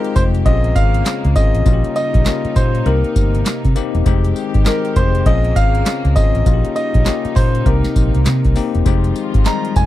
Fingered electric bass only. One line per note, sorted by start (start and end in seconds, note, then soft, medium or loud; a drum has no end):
0.16 0.41 F1 medium
0.46 0.71 A#1 loud
0.76 1.01 G#1 loud
1.25 1.34 C#2 medium
1.36 1.52 G#1 medium
1.55 1.64 A1 medium
1.66 1.82 A#1 loud
2.15 2.24 A#1 medium
2.45 muted fingered electric bass stroke medium
2.56 2.81 A#2 medium
2.86 3.02 C2 loud
3.16 3.41 G1 medium
3.65 3.74 C3 loud
3.95 4.04 E1 loud
4.06 4.31 F1 loud
4.55 4.64 G#1 medium
4.96 5.21 F1 medium
5.26 5.51 A#1 loud
5.56 5.81 G#1 loud
6.05 6.14 C#2 medium
6.16 6.32 G#1 medium
6.35 6.44 A1 medium
6.46 6.62 A#1 loud
6.95 7.04 A#1 medium
7.25 muted fingered electric bass stroke soft
7.36 7.61 A#2 medium
7.66 7.82 C2 loud
7.96 8.12 A#1 medium
8.15 8.24 C2 medium
8.26 8.42 C3 loud
8.45 8.54 C2 loud
8.75 8.84 E1 loud
8.86 9.11 F1 loud
9.35 9.44 G#1 medium
9.76 9.86 F1 medium